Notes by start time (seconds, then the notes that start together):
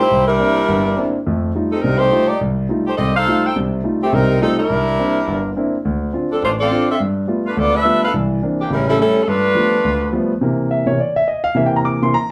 0.00 A#3 E4 G4 C5
0.11 C2
0.27 G3 D4 E4 A#4
0.40 A#3 C4 D4 E4
0.68 G1 G2
0.97 A#3 C4 D4 E4
1.26 F2 A3
1.55 G3 A3 D#4 F4
1.72 G3 C4 D#4 A4
1.82 C2 C3 G3 C4 D#4 A#4
1.98 A3 D#4 G4 C5
2.12 G3 A3 D#4 F4
2.28 A#3 D#4 G4 D5
2.41 C2
2.69 G3 A3 D#4 F4
2.87 A3 D#4 G4 C5
2.98 C2 C4 G4 A4 D#5
3.16 D#4 A4 C5 F5
3.27 G3 A3 D#4 F4
3.45 D#4 A4 C5 G5
3.56 C2 C3
3.84 G3 A3 D#4 F4
4.03 D#3 A3 C4 G4
4.12 C2 C3 G3 C4 D#4 A#4
4.41 G3 A3 C4 D#4 F4 A4
4.59 G3 D4 E4 A#4
4.70 C2
4.99 A#3 C4 D4 E4
5.28 G1
5.57 A#3 C4 D4 E4
5.85 D2
6.13 C4 D4 F4
6.32 F3 C4 D4 A4
6.43 A1 A3 D4 F4 C5
6.60 C4 F4 A4 D5
6.70 C4 D4 F4
6.90 C4 F4 A4 E5
7.00 G2
7.27 G3 A3 B3 F4
7.46 A3 D4 F4 B4
7.57 D2 B3 F4 A4 D5
7.75 D4 A4 B4 E5
7.85 G3 A3 B3 F4
8.05 D4 A4 B4 F5
8.14 C2 E3
8.42 E3 A#3 C4 D4
8.61 E3 A#3 D4 G4
8.70 A1 C#3 G3 C#4 E4 A#4
8.89 G3 C#4 E4 A4
8.98 G3 A3 C#4 E4 A4
9.23 A4
9.28 G2 A3 D4 F4 B4
9.55 F3 G3 A3 B3
9.84 D2
10.12 F3 G3 A3 B3
10.41 C3 E3 A#3
10.71 E5
10.86 C3 E3 A#3 C#5
11.00 D5
11.16 E5
11.28 D#5
11.44 F5
11.55 C3 E3 A#3 E5
11.66 G5
11.76 A#5
11.85 D6
12.02 C3 E3 A#3 C6
12.14 A#5